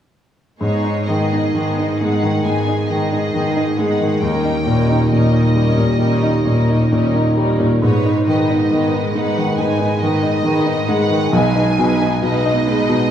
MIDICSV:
0, 0, Header, 1, 6, 480
1, 0, Start_track
1, 0, Key_signature, 5, "minor"
1, 0, Tempo, 943396
1, 308, Time_signature, 4, 2, 24, 8
1, 785, Tempo, 898204
1, 4625, Tempo, 863309
1, 5585, Tempo, 887574
1, 7020, End_track
2, 0, Start_track
2, 0, Title_t, "Violin section"
2, 0, Program_c, 0, 48
2, 313, Note_on_c, 0, 73, 55
2, 535, Note_off_c, 0, 73, 0
2, 548, Note_on_c, 0, 75, 41
2, 1024, Note_off_c, 0, 75, 0
2, 1027, Note_on_c, 0, 78, 50
2, 1267, Note_off_c, 0, 78, 0
2, 1267, Note_on_c, 0, 80, 46
2, 1502, Note_on_c, 0, 75, 46
2, 1508, Note_off_c, 0, 80, 0
2, 1980, Note_off_c, 0, 75, 0
2, 1980, Note_on_c, 0, 78, 54
2, 2210, Note_on_c, 0, 79, 51
2, 2218, Note_off_c, 0, 78, 0
2, 2690, Note_off_c, 0, 79, 0
2, 2690, Note_on_c, 0, 75, 51
2, 3879, Note_off_c, 0, 75, 0
2, 4140, Note_on_c, 0, 73, 59
2, 4365, Note_off_c, 0, 73, 0
2, 4386, Note_on_c, 0, 75, 45
2, 4866, Note_off_c, 0, 75, 0
2, 4869, Note_on_c, 0, 78, 58
2, 5106, Note_off_c, 0, 78, 0
2, 5108, Note_on_c, 0, 80, 50
2, 5340, Note_on_c, 0, 75, 59
2, 5344, Note_off_c, 0, 80, 0
2, 5817, Note_off_c, 0, 75, 0
2, 5817, Note_on_c, 0, 78, 68
2, 6059, Note_off_c, 0, 78, 0
2, 6062, Note_on_c, 0, 80, 66
2, 6541, Note_on_c, 0, 75, 62
2, 6542, Note_off_c, 0, 80, 0
2, 7020, Note_off_c, 0, 75, 0
2, 7020, End_track
3, 0, Start_track
3, 0, Title_t, "Violin section"
3, 0, Program_c, 1, 48
3, 311, Note_on_c, 1, 63, 36
3, 312, Note_on_c, 1, 68, 35
3, 542, Note_off_c, 1, 63, 0
3, 542, Note_off_c, 1, 68, 0
3, 548, Note_on_c, 1, 68, 34
3, 549, Note_on_c, 1, 63, 34
3, 776, Note_off_c, 1, 68, 0
3, 777, Note_off_c, 1, 63, 0
3, 782, Note_on_c, 1, 68, 33
3, 783, Note_on_c, 1, 63, 36
3, 1012, Note_off_c, 1, 63, 0
3, 1016, Note_off_c, 1, 68, 0
3, 1019, Note_on_c, 1, 63, 34
3, 1022, Note_on_c, 1, 68, 32
3, 1255, Note_off_c, 1, 63, 0
3, 1257, Note_off_c, 1, 68, 0
3, 1261, Note_on_c, 1, 63, 33
3, 1263, Note_on_c, 1, 68, 32
3, 1493, Note_off_c, 1, 68, 0
3, 1494, Note_off_c, 1, 63, 0
3, 1499, Note_on_c, 1, 68, 29
3, 1500, Note_on_c, 1, 63, 32
3, 1735, Note_off_c, 1, 63, 0
3, 1737, Note_off_c, 1, 68, 0
3, 1742, Note_on_c, 1, 63, 37
3, 1744, Note_on_c, 1, 68, 37
3, 1976, Note_off_c, 1, 63, 0
3, 1977, Note_off_c, 1, 68, 0
3, 1981, Note_on_c, 1, 63, 31
3, 1983, Note_on_c, 1, 68, 30
3, 2211, Note_off_c, 1, 63, 0
3, 2215, Note_off_c, 1, 68, 0
3, 2217, Note_on_c, 1, 63, 37
3, 2219, Note_on_c, 1, 70, 36
3, 2447, Note_off_c, 1, 63, 0
3, 2450, Note_off_c, 1, 70, 0
3, 2454, Note_on_c, 1, 63, 36
3, 2456, Note_on_c, 1, 70, 34
3, 2689, Note_off_c, 1, 63, 0
3, 2690, Note_off_c, 1, 70, 0
3, 2697, Note_on_c, 1, 63, 33
3, 2697, Note_on_c, 1, 70, 36
3, 2924, Note_off_c, 1, 70, 0
3, 2926, Note_off_c, 1, 63, 0
3, 2930, Note_on_c, 1, 70, 35
3, 2932, Note_on_c, 1, 63, 39
3, 3164, Note_off_c, 1, 63, 0
3, 3164, Note_off_c, 1, 70, 0
3, 3170, Note_on_c, 1, 70, 34
3, 3171, Note_on_c, 1, 63, 33
3, 3409, Note_off_c, 1, 63, 0
3, 3409, Note_off_c, 1, 70, 0
3, 3418, Note_on_c, 1, 63, 32
3, 3419, Note_on_c, 1, 70, 33
3, 3652, Note_off_c, 1, 70, 0
3, 3653, Note_off_c, 1, 63, 0
3, 3658, Note_on_c, 1, 70, 37
3, 3659, Note_on_c, 1, 63, 34
3, 3892, Note_off_c, 1, 70, 0
3, 3895, Note_off_c, 1, 63, 0
3, 3899, Note_on_c, 1, 70, 34
3, 3901, Note_on_c, 1, 63, 31
3, 4134, Note_off_c, 1, 63, 0
3, 4136, Note_off_c, 1, 70, 0
3, 4140, Note_on_c, 1, 63, 36
3, 4141, Note_on_c, 1, 71, 41
3, 4374, Note_off_c, 1, 63, 0
3, 4375, Note_off_c, 1, 71, 0
3, 4380, Note_on_c, 1, 63, 39
3, 4381, Note_on_c, 1, 71, 36
3, 4611, Note_off_c, 1, 63, 0
3, 4612, Note_off_c, 1, 71, 0
3, 4617, Note_on_c, 1, 63, 42
3, 4619, Note_on_c, 1, 71, 37
3, 4852, Note_off_c, 1, 71, 0
3, 4853, Note_off_c, 1, 63, 0
3, 4858, Note_on_c, 1, 71, 41
3, 4859, Note_on_c, 1, 63, 38
3, 5096, Note_off_c, 1, 63, 0
3, 5096, Note_off_c, 1, 71, 0
3, 5104, Note_on_c, 1, 63, 38
3, 5106, Note_on_c, 1, 71, 39
3, 5338, Note_off_c, 1, 63, 0
3, 5339, Note_off_c, 1, 71, 0
3, 5346, Note_on_c, 1, 63, 38
3, 5346, Note_on_c, 1, 71, 35
3, 5574, Note_off_c, 1, 63, 0
3, 5575, Note_off_c, 1, 71, 0
3, 5581, Note_on_c, 1, 63, 42
3, 5582, Note_on_c, 1, 71, 42
3, 5809, Note_off_c, 1, 63, 0
3, 5811, Note_off_c, 1, 71, 0
3, 5816, Note_on_c, 1, 63, 39
3, 5817, Note_on_c, 1, 71, 36
3, 6047, Note_off_c, 1, 71, 0
3, 6048, Note_off_c, 1, 63, 0
3, 6054, Note_on_c, 1, 63, 39
3, 6054, Note_on_c, 1, 71, 42
3, 6290, Note_off_c, 1, 71, 0
3, 6293, Note_off_c, 1, 63, 0
3, 6296, Note_on_c, 1, 71, 43
3, 6300, Note_on_c, 1, 63, 41
3, 6529, Note_off_c, 1, 71, 0
3, 6532, Note_off_c, 1, 63, 0
3, 6535, Note_on_c, 1, 71, 47
3, 6538, Note_on_c, 1, 63, 45
3, 6767, Note_off_c, 1, 71, 0
3, 6769, Note_off_c, 1, 63, 0
3, 6774, Note_on_c, 1, 71, 46
3, 6776, Note_on_c, 1, 63, 43
3, 7013, Note_off_c, 1, 71, 0
3, 7014, Note_off_c, 1, 63, 0
3, 7020, End_track
4, 0, Start_track
4, 0, Title_t, "Viola section"
4, 0, Program_c, 2, 48
4, 305, Note_on_c, 2, 56, 36
4, 305, Note_on_c, 2, 59, 34
4, 539, Note_off_c, 2, 59, 0
4, 540, Note_off_c, 2, 56, 0
4, 545, Note_on_c, 2, 59, 29
4, 546, Note_on_c, 2, 56, 30
4, 771, Note_off_c, 2, 56, 0
4, 774, Note_off_c, 2, 59, 0
4, 777, Note_on_c, 2, 56, 30
4, 780, Note_on_c, 2, 59, 34
4, 1013, Note_off_c, 2, 59, 0
4, 1015, Note_off_c, 2, 56, 0
4, 1020, Note_on_c, 2, 59, 33
4, 1021, Note_on_c, 2, 56, 31
4, 1251, Note_off_c, 2, 56, 0
4, 1251, Note_off_c, 2, 59, 0
4, 1257, Note_on_c, 2, 56, 35
4, 1257, Note_on_c, 2, 59, 38
4, 1494, Note_off_c, 2, 56, 0
4, 1497, Note_off_c, 2, 59, 0
4, 1500, Note_on_c, 2, 56, 31
4, 1503, Note_on_c, 2, 59, 30
4, 1730, Note_off_c, 2, 59, 0
4, 1732, Note_off_c, 2, 56, 0
4, 1736, Note_on_c, 2, 59, 36
4, 1738, Note_on_c, 2, 56, 35
4, 1972, Note_off_c, 2, 56, 0
4, 1973, Note_off_c, 2, 59, 0
4, 1979, Note_on_c, 2, 56, 33
4, 1980, Note_on_c, 2, 59, 33
4, 2213, Note_off_c, 2, 56, 0
4, 2214, Note_off_c, 2, 59, 0
4, 2214, Note_on_c, 2, 55, 31
4, 2216, Note_on_c, 2, 61, 36
4, 2444, Note_off_c, 2, 55, 0
4, 2444, Note_off_c, 2, 61, 0
4, 2450, Note_on_c, 2, 61, 34
4, 2451, Note_on_c, 2, 55, 30
4, 2679, Note_off_c, 2, 55, 0
4, 2680, Note_off_c, 2, 61, 0
4, 2686, Note_on_c, 2, 55, 34
4, 2686, Note_on_c, 2, 61, 35
4, 2921, Note_off_c, 2, 55, 0
4, 2922, Note_off_c, 2, 61, 0
4, 2927, Note_on_c, 2, 55, 35
4, 2928, Note_on_c, 2, 61, 35
4, 3154, Note_off_c, 2, 61, 0
4, 3158, Note_off_c, 2, 55, 0
4, 3161, Note_on_c, 2, 61, 39
4, 3164, Note_on_c, 2, 55, 40
4, 3400, Note_off_c, 2, 55, 0
4, 3401, Note_off_c, 2, 61, 0
4, 3407, Note_on_c, 2, 55, 33
4, 3408, Note_on_c, 2, 61, 33
4, 3647, Note_off_c, 2, 55, 0
4, 3647, Note_off_c, 2, 61, 0
4, 3653, Note_on_c, 2, 55, 36
4, 3653, Note_on_c, 2, 61, 35
4, 3889, Note_off_c, 2, 55, 0
4, 3891, Note_off_c, 2, 61, 0
4, 3895, Note_on_c, 2, 55, 34
4, 3897, Note_on_c, 2, 61, 37
4, 4134, Note_off_c, 2, 55, 0
4, 4135, Note_off_c, 2, 61, 0
4, 4143, Note_on_c, 2, 56, 37
4, 4144, Note_on_c, 2, 59, 37
4, 4376, Note_off_c, 2, 59, 0
4, 4378, Note_off_c, 2, 56, 0
4, 4382, Note_on_c, 2, 59, 36
4, 4384, Note_on_c, 2, 56, 36
4, 4615, Note_off_c, 2, 56, 0
4, 4616, Note_off_c, 2, 59, 0
4, 4621, Note_on_c, 2, 56, 40
4, 4622, Note_on_c, 2, 59, 38
4, 4854, Note_off_c, 2, 59, 0
4, 4856, Note_off_c, 2, 56, 0
4, 4861, Note_on_c, 2, 59, 40
4, 4863, Note_on_c, 2, 56, 37
4, 5093, Note_off_c, 2, 56, 0
4, 5095, Note_off_c, 2, 59, 0
4, 5100, Note_on_c, 2, 56, 40
4, 5102, Note_on_c, 2, 59, 41
4, 5329, Note_off_c, 2, 56, 0
4, 5330, Note_off_c, 2, 59, 0
4, 5336, Note_on_c, 2, 56, 39
4, 5337, Note_on_c, 2, 59, 41
4, 5568, Note_off_c, 2, 56, 0
4, 5568, Note_off_c, 2, 59, 0
4, 5574, Note_on_c, 2, 59, 43
4, 5575, Note_on_c, 2, 56, 42
4, 5808, Note_off_c, 2, 56, 0
4, 5810, Note_off_c, 2, 59, 0
4, 5814, Note_on_c, 2, 56, 43
4, 5815, Note_on_c, 2, 59, 38
4, 6051, Note_off_c, 2, 56, 0
4, 6052, Note_off_c, 2, 59, 0
4, 6058, Note_on_c, 2, 56, 46
4, 6058, Note_on_c, 2, 59, 44
4, 6290, Note_off_c, 2, 59, 0
4, 6291, Note_off_c, 2, 56, 0
4, 6296, Note_on_c, 2, 59, 38
4, 6297, Note_on_c, 2, 56, 38
4, 6534, Note_off_c, 2, 56, 0
4, 6534, Note_off_c, 2, 59, 0
4, 6540, Note_on_c, 2, 59, 45
4, 6541, Note_on_c, 2, 56, 39
4, 6775, Note_off_c, 2, 56, 0
4, 6777, Note_off_c, 2, 59, 0
4, 6782, Note_on_c, 2, 56, 44
4, 6782, Note_on_c, 2, 59, 41
4, 7013, Note_off_c, 2, 56, 0
4, 7013, Note_off_c, 2, 59, 0
4, 7020, End_track
5, 0, Start_track
5, 0, Title_t, "Grand piano"
5, 0, Program_c, 3, 0
5, 309, Note_on_c, 3, 44, 42
5, 405, Control_c, 3, 64, 127
5, 431, Note_on_c, 3, 63, 28
5, 552, Note_on_c, 3, 51, 33
5, 621, Note_off_c, 3, 63, 0
5, 676, Note_on_c, 3, 63, 32
5, 739, Note_off_c, 3, 51, 0
5, 787, Note_on_c, 3, 51, 29
5, 861, Note_off_c, 3, 63, 0
5, 915, Note_on_c, 3, 63, 32
5, 978, Note_off_c, 3, 51, 0
5, 1035, Note_on_c, 3, 56, 31
5, 1102, Note_off_c, 3, 63, 0
5, 1152, Note_on_c, 3, 51, 33
5, 1223, Note_off_c, 3, 56, 0
5, 1245, Note_off_c, 3, 44, 0
5, 1273, Note_on_c, 3, 56, 33
5, 1342, Note_off_c, 3, 51, 0
5, 1393, Note_on_c, 3, 63, 31
5, 1462, Note_off_c, 3, 56, 0
5, 1512, Note_on_c, 3, 51, 34
5, 1583, Note_off_c, 3, 63, 0
5, 1628, Note_on_c, 3, 63, 30
5, 1701, Note_off_c, 3, 51, 0
5, 1746, Note_on_c, 3, 51, 35
5, 1818, Note_off_c, 3, 63, 0
5, 1865, Note_on_c, 3, 63, 33
5, 1936, Note_off_c, 3, 51, 0
5, 1984, Note_on_c, 3, 56, 38
5, 2054, Note_off_c, 3, 63, 0
5, 2100, Note_on_c, 3, 51, 32
5, 2173, Note_off_c, 3, 56, 0
5, 2213, Note_on_c, 3, 39, 41
5, 2219, Note_off_c, 3, 51, 0
5, 2229, Control_c, 3, 64, 0
5, 2303, Control_c, 3, 64, 127
5, 2338, Note_on_c, 3, 63, 31
5, 2453, Note_on_c, 3, 46, 34
5, 2529, Note_off_c, 3, 63, 0
5, 2576, Note_on_c, 3, 63, 34
5, 2645, Note_off_c, 3, 46, 0
5, 2696, Note_on_c, 3, 46, 30
5, 2766, Note_off_c, 3, 63, 0
5, 2810, Note_on_c, 3, 63, 33
5, 2886, Note_off_c, 3, 46, 0
5, 2931, Note_on_c, 3, 55, 34
5, 3002, Note_off_c, 3, 63, 0
5, 3047, Note_on_c, 3, 46, 34
5, 3122, Note_off_c, 3, 55, 0
5, 3146, Note_off_c, 3, 39, 0
5, 3163, Note_on_c, 3, 55, 32
5, 3241, Note_off_c, 3, 46, 0
5, 3289, Note_on_c, 3, 63, 34
5, 3361, Note_off_c, 3, 55, 0
5, 3410, Note_on_c, 3, 46, 33
5, 3487, Note_off_c, 3, 63, 0
5, 3538, Note_on_c, 3, 63, 33
5, 3609, Note_off_c, 3, 46, 0
5, 3660, Note_on_c, 3, 46, 33
5, 3733, Note_off_c, 3, 63, 0
5, 3782, Note_on_c, 3, 63, 33
5, 3855, Note_off_c, 3, 46, 0
5, 3901, Note_on_c, 3, 55, 42
5, 3974, Note_off_c, 3, 63, 0
5, 4017, Note_on_c, 3, 46, 36
5, 4094, Note_off_c, 3, 55, 0
5, 4139, Note_on_c, 3, 44, 44
5, 4140, Note_off_c, 3, 46, 0
5, 4152, Control_c, 3, 64, 0
5, 4234, Control_c, 3, 64, 127
5, 4263, Note_on_c, 3, 63, 32
5, 4382, Note_on_c, 3, 51, 40
5, 4456, Note_off_c, 3, 63, 0
5, 4505, Note_on_c, 3, 63, 41
5, 4574, Note_off_c, 3, 51, 0
5, 4622, Note_on_c, 3, 51, 34
5, 4696, Note_off_c, 3, 63, 0
5, 4742, Note_on_c, 3, 63, 37
5, 4817, Note_off_c, 3, 51, 0
5, 4860, Note_on_c, 3, 56, 36
5, 4935, Note_off_c, 3, 63, 0
5, 4985, Note_on_c, 3, 51, 36
5, 5054, Note_off_c, 3, 56, 0
5, 5080, Note_off_c, 3, 44, 0
5, 5101, Note_on_c, 3, 56, 36
5, 5176, Note_off_c, 3, 51, 0
5, 5220, Note_on_c, 3, 63, 35
5, 5293, Note_off_c, 3, 56, 0
5, 5345, Note_on_c, 3, 51, 36
5, 5413, Note_off_c, 3, 63, 0
5, 5460, Note_on_c, 3, 63, 36
5, 5535, Note_off_c, 3, 51, 0
5, 5579, Note_on_c, 3, 51, 42
5, 5651, Note_off_c, 3, 63, 0
5, 5696, Note_on_c, 3, 63, 39
5, 5770, Note_off_c, 3, 51, 0
5, 5818, Note_on_c, 3, 56, 45
5, 5889, Note_off_c, 3, 63, 0
5, 5934, Note_on_c, 3, 51, 38
5, 6011, Note_off_c, 3, 56, 0
5, 6056, Note_on_c, 3, 35, 50
5, 6057, Note_off_c, 3, 51, 0
5, 6070, Control_c, 3, 64, 0
5, 6155, Control_c, 3, 64, 127
5, 6181, Note_on_c, 3, 63, 40
5, 6308, Note_on_c, 3, 47, 42
5, 6373, Note_off_c, 3, 63, 0
5, 6425, Note_on_c, 3, 63, 42
5, 6496, Note_off_c, 3, 47, 0
5, 6543, Note_on_c, 3, 47, 38
5, 6615, Note_off_c, 3, 63, 0
5, 6667, Note_on_c, 3, 63, 40
5, 6735, Note_off_c, 3, 47, 0
5, 6787, Note_on_c, 3, 56, 38
5, 6857, Note_off_c, 3, 63, 0
5, 6903, Note_on_c, 3, 47, 41
5, 6977, Note_off_c, 3, 56, 0
5, 6999, Note_off_c, 3, 35, 0
5, 7020, Note_off_c, 3, 47, 0
5, 7020, End_track
6, 0, Start_track
6, 0, Title_t, "Cello section"
6, 0, Program_c, 4, 48
6, 304, Note_on_c, 4, 44, 38
6, 727, Note_off_c, 4, 44, 0
6, 780, Note_on_c, 4, 44, 42
6, 1207, Note_off_c, 4, 44, 0
6, 1262, Note_on_c, 4, 44, 35
6, 1688, Note_off_c, 4, 44, 0
6, 1743, Note_on_c, 4, 44, 39
6, 2162, Note_off_c, 4, 44, 0
6, 2220, Note_on_c, 4, 39, 41
6, 2639, Note_off_c, 4, 39, 0
6, 2691, Note_on_c, 4, 39, 38
6, 3112, Note_off_c, 4, 39, 0
6, 3167, Note_on_c, 4, 39, 37
6, 3600, Note_off_c, 4, 39, 0
6, 3654, Note_on_c, 4, 39, 42
6, 4083, Note_off_c, 4, 39, 0
6, 4141, Note_on_c, 4, 44, 44
6, 4565, Note_off_c, 4, 44, 0
6, 4620, Note_on_c, 4, 44, 43
6, 5046, Note_off_c, 4, 44, 0
6, 5106, Note_on_c, 4, 44, 40
6, 5526, Note_off_c, 4, 44, 0
6, 5582, Note_on_c, 4, 44, 50
6, 6003, Note_off_c, 4, 44, 0
6, 6056, Note_on_c, 4, 47, 46
6, 6482, Note_off_c, 4, 47, 0
6, 6540, Note_on_c, 4, 47, 51
6, 6966, Note_off_c, 4, 47, 0
6, 7020, End_track
0, 0, End_of_file